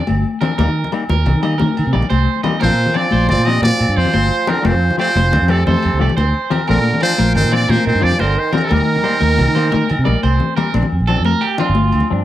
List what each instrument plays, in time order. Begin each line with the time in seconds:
0.07 fingered electric bass G1, high conga, low conga, low agogo
0.15 low conga
0.25 low conga
0.41 clean electric guitar F3 C4 D4 A#4, low conga, low agogo
0.58 fingered electric bass D#2, clean electric guitar G3 A#3 D#4 A#4, high conga, low agogo
0.68 fingered electric bass D#3, low conga
0.84 low conga
0.92 clean electric guitar G3 A#3 D#4, low agogo
1.09 fingered electric bass D#2, clean electric guitar A#4, high conga, low conga
1.26 fingered electric bass C2, low conga, low agogo
1.35 fingered electric bass D#3
1.43 clean electric guitar G3 A#3 D#4 D#5, low agogo
1.52 low conga
1.58 fingered electric bass D#3, clean electric guitar A#4, high conga, low conga
1.68 low conga
1.77 fingered electric bass D#3, low agogo
1.86 fingered electric bass C3, low conga
1.93 fingered electric bass A#1, clean electric guitar G3 A#3 D#4 D5
2.02 low conga
2.10 fingered electric bass C2, clean electric guitar C5, high conga, low conga, low agogo
2.36 low conga
2.43 clean electric guitar G3 A#3 D#4 D#5, low conga, low agogo
2.60 fingered electric bass A#1, clean electric guitar F3 C4 D4 A#4, muted trumpet C5, high conga, low agogo
2.65 bassoon F3
2.71 fingered electric bass A#2
2.86 low conga
2.94 clean electric guitar F3 C4 D4 D5, bassoon F3, muted trumpet D5, low agogo
3.11 fingered electric bass A#1, clean electric guitar C5, high conga, low conga
3.29 fingered electric bass G1, bassoon F3, muted trumpet D5, low conga, low agogo
3.37 fingered electric bass A#2
3.45 clean electric guitar F3 C4 D5, muted trumpet D#5, low agogo
3.49 bassoon G3, clean electric guitar D4
3.62 fingered electric bass A#2, bassoon F3, muted trumpet D5, muted clean electric guitar stroke, high conga, low conga
3.79 fingered electric bass A#2, low agogo
3.89 fingered electric bass G2
3.96 fingered electric bass F2, bassoon F3, clean electric guitar C4 D5, muted trumpet C5, low conga
4.05 low conga
4.13 fingered electric bass G1, clean electric guitar C5, high conga, low conga, low agogo
4.22 low conga
4.31 low conga
4.47 bassoon D3, clean electric guitar F3 C4 D4 A#4, muted trumpet A#4, low conga, low agogo
4.62 fingered electric bass F1, clean electric guitar F3 A3 C4 G4, muted trumpet C5, muted clean electric guitar stroke, high conga, low agogo
4.69 bassoon F3
4.74 fingered electric bass F2
4.91 low conga
4.97 clean electric guitar F3 A3 C4 G4 D5, muted trumpet C5, low agogo
5.02 bassoon F3
5.16 fingered electric bass F1, clean electric guitar C5, high conga, low conga
5.32 fingered electric bass D2, low conga, low agogo
5.42 fingered electric bass F2
5.48 bassoon C3, clean electric guitar F3 A3 C4 G4 D5, muted trumpet A4, low agogo
5.66 fingered electric bass F2, bassoon C3, muted trumpet A4, clean electric guitar C5, high conga, low conga
5.83 fingered electric bass F2, low agogo
5.94 fingered electric bass D2
5.99 fingered electric bass C2, clean electric guitar F3 A3 C4 G4 D5, low conga
6.09 low conga
6.17 fingered electric bass D2, clean electric guitar C5, high conga, low conga, low agogo
6.27 low conga
6.34 low conga
6.50 clean electric guitar F3 C4 G4 A#4, muted clean electric guitar stroke, low conga, low agogo
6.67 fingered electric bass A#1, bassoon D3, clean electric guitar F3 C4 D4 A#4, muted trumpet A#4, high conga, low agogo
6.77 fingered electric bass A#2
6.93 low conga
7.01 clean electric guitar F3 D4 D5, bassoon F3, muted trumpet C5, low agogo
7.18 fingered electric bass A#1, clean electric guitar A#4, high conga, low conga
7.35 fingered electric bass G1, bassoon D#3, muted trumpet C5, low conga, low agogo
7.45 fingered electric bass A#2
7.51 clean electric guitar F3 C4 D4 D5, bassoon F3, muted trumpet D5, low agogo
7.69 fingered electric bass A#2, bassoon F3, clean electric guitar A#4, muted trumpet C5, high conga, low conga
7.85 fingered electric bass A#2, bassoon D#3, muted trumpet C5, low agogo
7.95 fingered electric bass G2
8.01 fingered electric bass F2, clean electric guitar F3 C4 D4 D5, bassoon F3, muted trumpet D5, low conga
8.12 low conga
8.19 fingered electric bass G1, bassoon D3, muted trumpet A#4, clean electric guitar C5, high conga, low conga, low agogo
8.27 low conga
8.36 bassoon D#3, muted trumpet C5, low conga
8.53 bassoon D3, clean electric guitar F3 C4 D4 A#4, muted trumpet A#4, low conga, low agogo
8.62 bassoon C3, muted trumpet A4
8.69 fingered electric bass D#2, bassoon D#3, clean electric guitar G3 A#3 D#4 A#4, muted trumpet A#4, high conga, low conga, low agogo
8.80 fingered electric bass D#3, low conga
8.96 low conga
9.03 clean electric guitar G3 A#3 D#4 C5, low conga, low agogo
9.20 fingered electric bass D#2, clean electric guitar A#4, high conga, low conga
9.38 fingered electric bass C2, low conga, low agogo
9.48 fingered electric bass D#3
9.55 clean electric guitar A#3 D#4 C5, muted clean electric guitar stroke, low agogo
9.72 fingered electric bass D#3, clean electric guitar A#4, high conga, low conga
9.80 low conga
9.89 fingered electric bass D#3, high conga, low agogo
9.99 fingered electric bass C3
10.05 fingered electric bass A#1, clean electric guitar G3 A#3 D#4 D5, high conga
10.23 fingered electric bass C2, clean electric guitar C5, high conga, low agogo
10.40 low conga
10.56 clean electric guitar G3 A#3 A#4, muted clean electric guitar stroke, low conga, low agogo
10.74 fingered electric bass A#1, clean electric guitar C4 D4, muted clean electric guitar stroke, high conga, low conga, low agogo
10.83 low conga
10.92 fingered electric bass F2, low conga
11.00 fingered electric bass A#1, low conga
11.07 clean electric guitar F3 C4 D4 A4, low conga, low agogo
11.17 fingered electric bass F2, low conga
11.25 clean electric guitar A#4, high conga
11.41 clean electric guitar G4, low conga, low agogo
11.58 clean electric guitar F3 C4 D4 F4, low conga, low agogo
11.69 fingered electric bass G1
11.75 high conga
11.92 fingered electric bass D2, low agogo
12.00 low conga
12.10 fingered electric bass G2, clean electric guitar F3 C4 D4